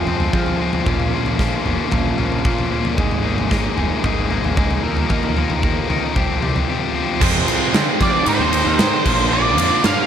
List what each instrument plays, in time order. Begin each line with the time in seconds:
Already playing: clean electric guitar F3 C4 F4 G#4 C5
0.06 picked electric bass F2, distorted electric guitar F3 G#3 C4 F4, floor tom
0.20 floor tom
0.33 picked electric bass F3, distorted electric guitar F3 G#3 C4 F4, clean electric guitar G#4 C5, kick
0.46 floor tom
0.60 distorted electric guitar F3 G#3 C4 F4, clean electric guitar G#4 C5
0.73 floor tom
0.86 picked electric bass A#1, distorted electric guitar A#2 F3 A#3 C#4 F4, clean electric guitar C5, kick, floor tom
0.99 picked electric bass A#1, floor tom
1.12 distorted electric guitar A#2 F3 A#3 C#4 F4, clean electric guitar C5
1.26 floor tom
1.39 distorted electric guitar A#2 F3 A#3 C#4 F4, clean electric guitar C5, kick, snare
1.65 picked electric bass G1, distorted electric guitar A#2 F3 A#3 C#4 F4, clean electric guitar C5, floor tom
1.91 picked electric bass A#1, distorted electric guitar A#2 F3 A#3 C#4 F4, clean electric guitar C5, kick, floor tom
2.17 picked electric bass A#1, distorted electric guitar A#2 F3 A#3 C#4 F4, floor tom
2.32 floor tom
2.44 distorted electric guitar A#2 F3 A#3 C#4 F4, picked electric bass A#2, clean electric guitar C5, kick
2.58 floor tom
2.70 distorted electric guitar A#2 F3 A#3 C#4 F4, clean electric guitar C5
2.85 floor tom
2.96 picked electric bass G#1, distorted electric guitar G#3 A#3 D#4 G#4, kick, floor tom
3.11 picked electric bass G#1, floor tom
3.23 distorted electric guitar G#3 A#3 D#4 G#4
3.38 floor tom
3.49 distorted electric guitar G#3 A#3 D#4 G#4, kick, snare
3.75 picked electric bass F1, distorted electric guitar G#3 A#3 D#4 G#4, floor tom
4.03 picked electric bass G#1, distorted electric guitar G#3 A#3 D#4 G#4, kick, floor tom
4.29 picked electric bass G#1, distorted electric guitar G#3 A#3 D#4 G#4, floor tom
4.44 floor tom
4.56 picked electric bass C#2, distorted electric guitar G#3 A#3 D#4 G#4, kick
4.71 floor tom
4.82 picked electric bass D#2, distorted electric guitar D#3 F3 A#3 D#4 A#4, clean electric guitar F4
4.97 floor tom
5.09 distorted electric guitar D#3 F3 A#3 D#4 A#4, clean electric guitar F4, kick, floor tom
5.23 picked electric bass D#2, floor tom
5.35 distorted electric guitar D#3 F3 A#3 D#4 A#4, clean electric guitar F4, floor tom
5.50 floor tom
5.62 distorted electric guitar D#3 F3 A#3 D#4 A#4, clean electric guitar F4, kick
5.88 picked electric bass C#2, distorted electric guitar D#3 F3 A#3 D#4 A#4, clean electric guitar F4, floor tom
6.14 picked electric bass C2, distorted electric guitar C3 F3 C4 F4 G4, clean electric guitar G3, kick, floor tom
6.41 picked electric bass C2, distorted electric guitar C3 F3 C4 F4 G4, floor tom
6.56 floor tom
6.67 distorted electric guitar C3 F3 C4 F4 G4, clean electric guitar G3
6.94 distorted electric guitar C3 F3 C4 F4 G4, clean electric guitar G3
7.20 overdriven electric guitar F2 C3, picked electric bass F2, distorted electric guitar F3 G#3 C4 F4, kick, crash
7.46 picked electric bass C2, overdriven electric guitar F3, distorted electric guitar G#3 C4 F4, ride
7.72 overdriven electric guitar C3, picked electric bass D3, distorted electric guitar F3 G#3 C4 F4, snare, ride
7.99 overdriven electric guitar F2 C3 F3, picked electric bass F3, distorted electric guitar G#3 C4 F4, lead electric guitar D5, kick, snare, ride
8.25 distorted electric guitar G#2 D#3 G#3 C4 D#4, picked electric bass G#2, ride
8.29 lead electric guitar C5
8.39 picked electric bass D#2
8.51 distorted electric guitar G#3 C4 D#4, ride
8.66 picked electric bass D#2
8.77 overdriven electric guitar G#2, picked electric bass G#2, distorted electric guitar D#3 G#3 C4 D#4, snare, ride
9.04 picked electric bass A#1, distorted electric guitar A#2 D3 F3 A#3 F4, kick, crash
9.30 distorted electric guitar A#2 D3 F3 A#3 F4, lead electric guitar D5
9.56 picked electric bass F2, distorted electric guitar F3 A#3 F4, ride
9.83 picked electric bass G2, distorted electric guitar D3 F3 A#3 F4, lead electric guitar F5, snare, ride